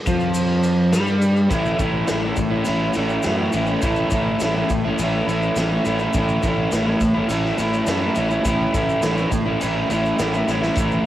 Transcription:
0.06 F2 F3, kick, crash, shaker
0.20 shaker
0.34 crash, shaker
0.63 crash, shaker
0.93 G2 G3, snare, crash, shaker
1.07 shaker
1.22 crash, shaker
1.37 shaker
1.49 A1 A2 E3 A3 C#4, kick, ride, shaker
1.54 E4
1.65 shaker
1.77 A1 E3 A3 C#4, kick, ride, shaker
1.82 E4
2.07 A2 E3 A3, snare, ride, shaker
2.11 A1 C#4 E4
2.23 C#4 E4
2.28 A3
2.36 A1, muted overdriven electric guitar stroke, kick, ride, shaker
2.51 C#4 E4
2.56 A3
2.65 E3 A3 C#4, ride, shaker
2.69 A1 E4
2.93 A1 E3 A3, ride, shaker
2.98 C#4 E4
3.09 shaker
3.22 F#2 A2 E3 A3, snare, ride, shaker
3.26 C#4 E4
3.37 C#4 E4
3.42 A3
3.51 A1 E3 A3 C#4, ride, shaker
3.56 E4
3.66 C#4 E4, shaker
3.72 A3
3.82 A1 A2 E3 A3 C#4, kick, ride, shaker
3.87 E4
3.96 shaker
4.10 A1 E3 A3, kick, ride, shaker
4.15 C#4 E4
4.40 A1 A2 E3 A3 C#4, snare, ride, shaker
4.45 E4
4.56 C#4 E4
4.60 A3
4.69 A1, muted overdriven electric guitar stroke, kick, ride, shaker
4.85 C#4 E4
4.90 A3
4.98 A1 E3 A3, ride, shaker
5.02 C#4 E4
5.26 A1 E3 A3 C#4, ride, shaker
5.31 E4
5.42 shaker
5.56 A1 A2 E3 A3 C#4, snare, ride, shaker
5.61 E4
5.70 C#4 E4
5.75 A3
5.85 A1 E3 A3 C#4, ride, shaker
5.90 E4
5.99 C#4 E4, shaker
6.05 A3
6.13 A1 A2 E3 A3, kick, ride, shaker
6.18 C#4 E4
6.28 shaker
6.43 A1 E3 A3, kick, ride, shaker
6.47 C#4 E4
6.71 A1 A2 E3 A3, snare, ride, shaker
6.76 C#4 E4
6.86 C#4 E4
6.91 A3
7.00 A1, muted overdriven electric guitar stroke, kick, snare, ride, shaker
7.15 C#4 E4
7.20 A3
7.28 A1 E3 A3 C#4, ride, shaker
7.33 E4
7.45 snare
7.57 A1 E3 A3 C#4, ride, shaker
7.62 E4
7.74 shaker
7.86 F#2 A2 E3 A3 C#4, snare, ride, shaker
7.91 E4
8.01 C#4 E4
8.05 A3
8.15 A1 E3 A3 C#4, ride, shaker
8.21 E4
8.29 C#4 E4, shaker
8.34 A3
8.43 A1 A2 E3 A3, kick, ride, shaker
8.47 C#4 E4
8.73 A1 E3 A3 C#4, kick, ride, shaker
8.78 E4
8.89 shaker
9.01 A1 A2 E3 A3, snare, ride, shaker
9.06 C#4 E4
9.15 C#4 E4, shaker
9.21 A3
9.31 A1, muted overdriven electric guitar stroke, kick, ride, shaker
9.45 C#4 E4
9.50 A3
9.60 A1 E3 A3 C#4, ride, shaker
9.64 E4
9.88 A1 E3 A3 C#4, ride, shaker
9.94 E4
10.05 shaker
10.18 A1 A2 E3 A3 C#4, snare, ride, shaker
10.22 E4
10.33 C#4 E4, shaker
10.38 A3
10.46 A1 E3 A3 C#4, snare, shaker
10.51 E4
10.61 C#4 E4, snare, shaker
10.66 A3
10.75 A1 A2 E3 A3 C#4, kick, ride, shaker
10.80 E4
10.91 shaker

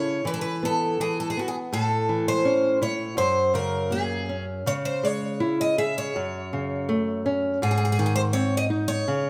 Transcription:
Already playing: C#3 E4 C#5
0.25 E3 B4
0.34 A4
0.41 B4
0.63 B3 A4
1.00 E3 G#4
1.20 A4
1.30 G#4
1.37 B3 F#4
1.48 G#4
1.73 A2 A4
2.09 E3
2.28 C5
2.45 C#4
2.82 E4 C#5
3.17 F#2 C5
3.54 C#3 A#4
3.91 A#3 G#4
4.29 C#4
4.66 C#3 C#5
4.85 C5
5.03 G#3 C#5
5.40 E4
5.61 D#5
5.78 G#4 E5
5.98 C#5
6.16 F#2
6.53 C#3
6.89 A3
7.26 C#4
7.62 G#2 G#4
7.71 G#4
7.78 G#4
7.85 G#4
7.92 G#4
7.99 D#3 G#4
8.06 G#4
8.16 C5
8.33 C4 C#5
8.57 D#5
8.70 D#4
8.88 C#5
9.08 C#3

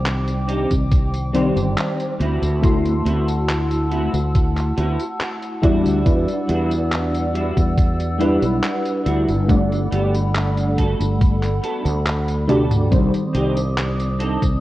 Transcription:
Already playing: C2 D#3 G3 C4 C5 D5 G5 D6
0.06 clap, closed hi-hat, tambourine
0.28 closed hi-hat, tambourine
0.48 C4 D4 D#4 G4, closed hi-hat
0.71 C2, kick, closed hi-hat, tambourine
0.92 kick, closed hi-hat, tambourine
1.14 closed hi-hat, tambourine
1.34 D#3 G3 C4 D4 D#4 G4 C5 D5, closed hi-hat
1.57 G1, closed hi-hat, tambourine
1.78 clap, closed hi-hat, tambourine
2.00 closed hi-hat, tambourine
2.19 D2 B3 C4 E4 F#4 F#5 A5 E6, closed hi-hat
2.42 D2, closed hi-hat, tambourine
2.62 A3 E4 F#4 C6, kick, closed hi-hat, tambourine
2.85 closed hi-hat, tambourine
3.05 D2 B3 C4 E4 F#4, closed hi-hat
3.28 closed hi-hat, tambourine
3.49 clap, closed hi-hat, tambourine
3.71 closed hi-hat, tambourine
3.91 B3 C4 E4 F#4, closed hi-hat
4.13 D2, closed hi-hat, tambourine
4.35 kick, closed hi-hat, tambourine
4.57 clap, closed hi-hat, tambourine
4.76 D2 B3 C4 E4 F#4, closed hi-hat
5.00 closed hi-hat, tambourine
5.21 clap, closed hi-hat, tambourine
5.43 closed hi-hat, tambourine
5.62 E2 G3 D4 E4 F#4 D5 E6, kick, closed hi-hat
5.86 D2, closed hi-hat, tambourine
6.04 E2 G3 D4 E4 F#4 B4, kick, closed hi-hat, tambourine
6.29 closed hi-hat, tambourine
6.48 E2 G3 D4 E4 F#4, closed hi-hat
6.71 closed hi-hat, tambourine
6.92 clap, closed hi-hat, tambourine
7.14 closed hi-hat, tambourine
7.34 G3 D4 E4 F#4, closed hi-hat
7.57 E2, kick, closed hi-hat, tambourine
7.78 kick, closed hi-hat, tambourine
8.00 closed hi-hat, tambourine
8.18 G3 D4 E4 G4 B4 F#5, closed hi-hat
8.43 B1, closed hi-hat, tambourine
8.64 clap, closed hi-hat, tambourine
8.86 closed hi-hat, tambourine
9.05 D2 G3 D4 E4 F#4, closed hi-hat
9.29 G1, closed hi-hat, tambourine
9.48 G3 A3 D4 A4 D5 F#5 B5, kick, closed hi-hat, tambourine
9.72 closed hi-hat, tambourine
9.91 G1 A3 B3 F#4 G4, closed hi-hat
10.14 closed hi-hat, tambourine
10.35 clap, closed hi-hat, tambourine
10.57 closed hi-hat, tambourine
10.77 A3 B3 F#4 A4, kick, closed hi-hat
11.00 G1, closed hi-hat, tambourine
11.21 kick, closed hi-hat, tambourine
11.42 clap, closed hi-hat, tambourine
11.62 A3 B3 F#4 A4, closed hi-hat
11.85 D2, closed hi-hat, tambourine
12.06 clap, closed hi-hat, tambourine
12.28 closed hi-hat, tambourine
12.48 A3 B3 D4 F#4 G4 A4 D5, closed hi-hat, high tom
12.71 closed hi-hat, mid tom, tambourine
12.90 C2 D#3 G3 C4 C5 D5 D6 D#6, kick, closed hi-hat, tambourine
13.14 closed hi-hat, tambourine
13.33 C2 C4 D4 D#4 G4, closed hi-hat
13.57 closed hi-hat, tambourine
13.78 clap, closed hi-hat, tambourine
14.00 closed hi-hat, tambourine
14.19 C4 D4 D#4 A4, closed hi-hat
14.42 C2, kick, closed hi-hat, tambourine

